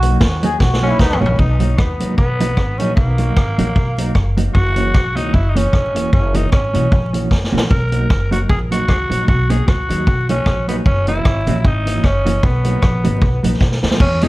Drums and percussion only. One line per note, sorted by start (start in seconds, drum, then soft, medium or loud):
0.02 closed hi-hat medium
0.21 kick loud
0.21 snare loud
0.43 closed hi-hat medium
0.60 kick loud
0.60 snare medium
0.73 snare medium
0.99 kick loud
0.99 snare medium
1.13 floor tom loud
1.26 floor tom medium
1.39 kick loud
1.60 closed hi-hat medium
1.78 kick loud
1.78 cross-stick loud
2.00 closed hi-hat medium
2.18 kick loud
2.40 closed hi-hat loud
2.57 kick medium
2.57 cross-stick medium
2.80 closed hi-hat medium
2.97 kick loud
3.18 closed hi-hat medium
3.37 kick loud
3.37 cross-stick loud
3.59 closed hi-hat medium
3.76 kick medium
3.98 closed hi-hat loud
4.15 kick medium
4.15 cross-stick medium
4.37 closed hi-hat medium
4.55 kick loud
4.76 closed hi-hat medium
4.94 kick loud
4.94 cross-stick loud
5.17 closed hi-hat medium
5.34 kick loud
5.56 closed hi-hat loud
5.73 kick medium
5.73 cross-stick medium
5.96 closed hi-hat medium
6.13 kick loud
6.34 closed hi-hat medium
6.52 kick loud
6.52 cross-stick loud
6.74 closed hi-hat medium
6.92 kick loud
7.14 closed hi-hat medium
7.31 kick medium
7.31 snare soft
7.44 snare medium
7.58 snare medium
7.71 kick loud
7.92 closed hi-hat medium
8.10 kick loud
8.10 cross-stick loud
8.32 closed hi-hat medium
8.49 kick loud
8.72 closed hi-hat loud
8.88 kick medium
8.88 cross-stick medium
9.11 closed hi-hat medium
9.28 kick loud
9.50 closed hi-hat medium
9.68 kick loud
9.68 cross-stick loud
9.90 closed hi-hat medium
10.07 kick loud
10.29 closed hi-hat medium
10.46 kick medium
10.46 cross-stick medium
10.69 closed hi-hat medium
10.86 kick loud
11.07 closed hi-hat medium
11.25 kick loud
11.25 cross-stick loud
11.47 closed hi-hat medium
11.65 kick loud
11.87 closed hi-hat loud
12.04 kick medium
12.04 cross-stick medium
12.26 closed hi-hat medium
12.43 kick loud
12.64 closed hi-hat medium
12.82 kick loud
12.82 cross-stick loud
13.04 closed hi-hat medium
13.22 kick loud
13.44 closed hi-hat medium
13.61 kick medium
13.61 snare soft
13.72 snare medium
13.83 snare medium
13.91 snare medium
14.00 kick loud
14.00 crash loud
14.21 closed hi-hat medium